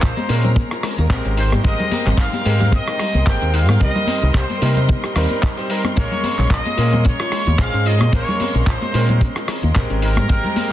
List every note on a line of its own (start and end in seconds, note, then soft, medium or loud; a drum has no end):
0.00 0.12 A#1 medium
0.00 0.26 G#3 loud
0.00 0.26 A#3 medium
0.00 0.26 C#4 loud
0.00 0.12 F4 medium
0.00 0.27 A#4 loud
0.00 9.98 A#4 medium
0.00 0.53 C5 medium
0.00 1.35 A#5 medium
0.00 kick loud
0.00 clap loud
0.00 closed hi-hat loud
0.00 tambourine medium
0.17 0.25 G#3 loud
0.17 closed hi-hat soft
0.17 tambourine soft
0.17 high conga medium
0.28 0.62 A#2 loud
0.28 1.07 G#3 medium
0.28 0.43 A#3 loud
0.28 1.07 C4 medium
0.28 1.08 C#4 medium
0.28 1.08 A#4 medium
0.28 open hi-hat loud
0.44 0.52 C4 loud
0.44 closed hi-hat soft
0.44 tambourine medium
0.44 muted conga medium
0.44 low conga medium
0.56 0.62 C#4 medium
0.56 kick loud
0.56 closed hi-hat loud
0.56 tambourine medium
0.56 high conga loud
0.71 0.83 F4 medium
0.71 cross-stick medium
0.71 closed hi-hat soft
0.71 tambourine soft
0.83 0.89 G#3 medium
0.83 cross-stick medium
0.83 open hi-hat loud
0.98 1.06 D#2 medium
0.98 1.10 A#3 medium
0.98 closed hi-hat soft
0.98 tambourine medium
0.98 high conga medium
1.10 1.19 A#1 loud
1.10 1.61 G#3 medium
1.10 1.20 C4 medium
1.10 1.61 C4 medium
1.10 1.62 G4 medium
1.10 1.62 A#4 loud
1.10 kick loud
1.10 clap loud
1.10 closed hi-hat loud
1.10 tambourine medium
1.25 1.54 G#1 medium
1.25 1.33 C#4 loud
1.25 closed hi-hat soft
1.25 tambourine soft
1.37 1.47 D#4 medium
1.37 1.50 C5 medium
1.37 5.93 G5 medium
1.37 10.72 C6 medium
1.37 open hi-hat medium
1.52 1.60 G#2 medium
1.52 1.60 G3 loud
1.52 cross-stick medium
1.52 closed hi-hat soft
1.52 tambourine medium
1.52 high conga medium
1.63 1.74 G#1 loud
1.63 1.70 G3 medium
1.63 2.42 G#3 loud
1.63 2.42 C4 loud
1.63 2.43 G4 medium
1.63 2.43 A#4 loud
1.63 2.15 D#5 loud
1.63 kick loud
1.63 closed hi-hat medium
1.63 tambourine medium
1.79 1.91 G#3 medium
1.79 closed hi-hat soft
1.79 tambourine soft
1.79 low conga medium
1.92 1.97 A#3 medium
1.92 open hi-hat loud
1.92 muted conga soft
1.92 high conga loud
2.06 2.14 G#1 loud
2.06 2.18 C4 medium
2.06 clap soft
2.06 closed hi-hat soft
2.06 tambourine medium
2.06 low conga medium
2.17 2.28 D#4 medium
2.17 2.73 F5 loud
2.17 kick loud
2.17 clap loud
2.17 closed hi-hat medium
2.17 tambourine medium
2.33 2.41 G3 loud
2.33 closed hi-hat soft
2.33 tambourine soft
2.33 high conga medium
2.45 2.78 G#2 loud
2.45 3.23 G#3 medium
2.45 2.60 G#3 loud
2.45 3.24 C4 medium
2.45 3.24 G4 medium
2.45 3.24 A#4 loud
2.45 open hi-hat loud
2.60 2.68 A#3 loud
2.60 closed hi-hat soft
2.60 tambourine medium
2.60 muted conga medium
2.60 low conga medium
2.72 2.78 C4 medium
2.72 3.27 D#5 loud
2.72 kick loud
2.72 closed hi-hat medium
2.72 tambourine medium
2.72 muted conga soft
2.72 high conga loud
2.88 2.99 D#4 medium
2.88 cross-stick medium
2.88 closed hi-hat soft
2.88 tambourine soft
2.99 3.05 G3 medium
2.99 cross-stick medium
2.99 open hi-hat loud
3.14 3.22 C2 medium
3.14 3.26 G#3 medium
3.14 closed hi-hat soft
3.14 tambourine medium
3.14 high conga medium
3.26 3.36 G#1 loud
3.26 3.77 G#3 medium
3.26 3.36 A#3 medium
3.26 3.78 C4 medium
3.26 3.78 G4 medium
3.26 3.78 A#4 loud
3.26 3.52 G5 loud
3.26 kick loud
3.26 clap loud
3.26 closed hi-hat medium
3.26 tambourine medium
3.41 3.69 D#2 medium
3.41 3.49 C4 loud
3.41 closed hi-hat soft
3.41 tambourine soft
3.54 3.63 D#4 medium
3.54 3.81 F5 loud
3.54 open hi-hat loud
3.68 3.76 G#2 medium
3.68 3.76 G3 loud
3.68 cross-stick medium
3.68 closed hi-hat soft
3.68 tambourine medium
3.68 high conga medium
3.80 3.90 C2 loud
3.80 4.58 G3 loud
3.80 3.86 G3 medium
3.80 4.59 C4 medium
3.80 4.59 D#4 medium
3.80 4.59 A#4 loud
3.80 5.95 D#5 medium
3.80 4.31 D#5 loud
3.80 kick loud
3.80 closed hi-hat medium
3.80 tambourine medium
3.95 4.07 A#3 medium
3.95 closed hi-hat soft
3.95 tambourine soft
3.95 low conga medium
4.07 4.13 C4 medium
4.07 open hi-hat loud
4.07 muted conga medium
4.07 high conga loud
4.21 4.30 C2 loud
4.21 4.34 D#4 medium
4.21 closed hi-hat soft
4.21 tambourine medium
4.34 4.44 C2 medium
4.34 4.44 G4 medium
4.34 4.89 C5 medium
4.34 kick loud
4.34 clap loud
4.34 closed hi-hat medium
4.34 tambourine medium
4.50 4.57 G3 loud
4.50 closed hi-hat soft
4.50 tambourine soft
4.50 high conga medium
4.61 4.95 C3 loud
4.61 5.13 G3 medium
4.61 4.76 A#3 loud
4.61 5.13 C4 medium
4.61 5.13 D#4 medium
4.61 5.14 A#4 medium
4.61 open hi-hat loud
4.76 4.84 C4 loud
4.76 closed hi-hat soft
4.76 tambourine medium
4.76 muted conga medium
4.76 low conga medium
4.89 4.95 D#4 medium
4.89 kick loud
4.89 closed hi-hat medium
4.89 tambourine medium
4.89 high conga medium
5.04 5.15 G4 medium
5.04 cross-stick medium
5.04 closed hi-hat soft
5.04 tambourine soft
5.15 5.25 D#2 medium
5.15 5.54 G3 loud
5.15 5.54 C4 medium
5.15 5.25 C4 loud
5.15 5.54 D#4 medium
5.15 5.54 A#4 loud
5.15 cross-stick medium
5.15 open hi-hat loud
5.31 5.38 G3 medium
5.31 closed hi-hat soft
5.31 tambourine medium
5.31 high conga medium
5.43 5.48 D#4 medium
5.43 kick loud
5.43 clap loud
5.43 closed hi-hat medium
5.43 tambourine medium
5.57 5.67 G3 medium
5.57 5.67 C4 medium
5.57 5.67 D#4 medium
5.57 5.65 G4 medium
5.57 5.67 C5 loud
5.57 closed hi-hat soft
5.57 tambourine soft
5.69 5.94 G3 medium
5.69 5.79 G3 medium
5.69 5.94 C4 medium
5.69 5.94 D#4 medium
5.69 5.82 A#4 medium
5.69 5.94 A#4 medium
5.69 open hi-hat loud
5.84 5.92 C4 medium
5.84 cross-stick medium
5.84 tambourine medium
5.84 high conga medium
5.96 6.06 A#1 loud
5.96 6.75 G#3 loud
5.96 6.02 G#3 medium
5.96 6.75 A#3 medium
5.96 6.75 C#4 medium
5.96 6.76 A#4 loud
5.96 6.47 C#5 loud
5.96 kick loud
5.96 closed hi-hat medium
5.96 tambourine medium
6.11 6.23 A#3 medium
6.11 closed hi-hat soft
6.11 tambourine soft
6.11 low conga medium
6.23 6.29 C4 medium
6.23 open hi-hat loud
6.23 muted conga soft
6.23 high conga loud
6.39 6.46 A#1 loud
6.39 6.50 C#4 medium
6.39 clap soft
6.39 tambourine medium
6.39 low conga medium
6.50 6.60 F4 medium
6.50 7.01 D#5 loud
6.50 kick loud
6.50 clap loud
6.50 closed hi-hat medium
6.50 tambourine medium
6.65 6.73 G#3 loud
6.65 closed hi-hat soft
6.65 tambourine soft
6.65 high conga medium
6.77 7.11 A#2 loud
6.77 7.56 G#3 medium
6.77 7.56 A#3 medium
6.77 6.92 A#3 loud
6.77 7.56 C#4 medium
6.77 7.57 A#4 medium
6.77 open hi-hat medium
6.93 7.00 C4 loud
6.93 closed hi-hat soft
6.93 tambourine medium
6.93 muted conga medium
6.93 low conga medium
7.05 7.10 C#4 medium
7.05 7.59 C#5 loud
7.05 kick loud
7.05 closed hi-hat medium
7.05 tambourine medium
7.05 muted conga soft
7.05 high conga medium
7.20 7.31 F4 medium
7.20 cross-stick medium
7.20 closed hi-hat soft
7.20 tambourine soft
7.32 7.38 G#3 medium
7.32 cross-stick medium
7.32 open hi-hat loud
7.47 7.54 D#2 medium
7.47 7.58 A#3 medium
7.47 closed hi-hat soft
7.47 tambourine medium
7.47 high conga medium
7.59 7.68 A#1 loud
7.59 8.10 G#3 loud
7.59 7.68 C4 medium
7.59 8.10 C4 medium
7.59 8.10 C#4 medium
7.59 8.10 G#4 loud
7.59 7.86 F5 loud
7.59 kick loud
7.59 clap loud
7.59 closed hi-hat medium
7.59 tambourine medium
7.74 8.01 G#2 loud
7.74 7.81 C#4 loud
7.74 closed hi-hat soft
7.74 tambourine soft
7.86 7.95 F4 medium
7.86 8.13 D#5 loud
7.86 open hi-hat medium
8.01 8.09 A#2 medium
8.01 8.09 G#3 loud
8.01 cross-stick medium
8.01 closed hi-hat soft
8.01 tambourine medium
8.01 high conga medium
8.12 8.22 A#1 loud
8.12 8.91 G#3 loud
8.12 8.91 A#3 medium
8.12 8.91 C#4 medium
8.12 8.92 A#4 loud
8.12 8.64 C#5 loud
8.12 kick loud
8.12 closed hi-hat medium
8.12 tambourine medium
8.28 8.39 A#3 medium
8.28 closed hi-hat soft
8.28 tambourine soft
8.28 low conga medium
8.40 8.46 C4 medium
8.40 open hi-hat loud
8.40 muted conga soft
8.40 high conga medium
8.55 8.63 A#1 loud
8.55 8.66 C#4 medium
8.55 closed hi-hat soft
8.55 tambourine medium
8.67 8.76 F4 medium
8.67 9.21 C5 medium
8.67 kick loud
8.67 clap loud
8.67 closed hi-hat loud
8.82 8.90 G#3 loud
8.82 closed hi-hat soft
8.82 tambourine soft
8.82 high conga medium
8.93 9.27 A#2 loud
8.93 9.72 G#3 medium
8.93 9.08 A#3 loud
8.93 9.72 C4 medium
8.93 9.73 C#4 medium
8.93 9.73 A#4 medium
8.93 open hi-hat loud
9.09 9.17 C4 loud
9.09 closed hi-hat soft
9.09 tambourine medium
9.09 muted conga medium
9.09 low conga medium
9.20 9.27 C#4 medium
9.20 kick loud
9.20 closed hi-hat loud
9.20 tambourine medium
9.20 high conga medium
9.36 9.48 F4 medium
9.36 cross-stick medium
9.36 closed hi-hat soft
9.36 tambourine soft
9.48 9.54 G#3 medium
9.48 cross-stick medium
9.48 open hi-hat loud
9.63 9.71 D#2 medium
9.63 9.75 A#3 medium
9.63 closed hi-hat soft
9.63 tambourine medium
9.63 high conga medium
9.75 9.85 A#1 loud
9.75 10.26 G#3 loud
9.75 10.26 C4 medium
9.75 9.85 C4 medium
9.75 10.27 G4 medium
9.75 10.27 A#4 loud
9.75 kick loud
9.75 clap loud
9.75 closed hi-hat medium
9.75 tambourine medium
9.90 10.19 G#1 medium
9.90 9.98 C#4 loud
9.90 closed hi-hat soft
9.90 tambourine soft
10.02 10.12 D#4 medium
10.02 10.72 A#4 medium
10.02 10.72 A#4 loud
10.02 10.72 G5 medium
10.02 open hi-hat medium
10.16 10.25 G#2 medium
10.16 10.25 G3 loud
10.16 cross-stick medium
10.16 closed hi-hat soft
10.16 tambourine medium
10.16 high conga medium
10.28 10.39 G#1 loud
10.28 10.35 G3 medium
10.28 10.72 G#3 loud
10.28 10.72 C4 medium
10.28 10.72 G4 loud
10.28 10.72 A#4 loud
10.28 kick loud
10.28 closed hi-hat loud
10.28 tambourine medium
10.44 10.56 G#3 medium
10.44 closed hi-hat soft
10.44 tambourine soft
10.44 low conga medium
10.56 10.62 A#3 medium
10.56 open hi-hat loud
10.56 muted conga soft
10.56 high conga medium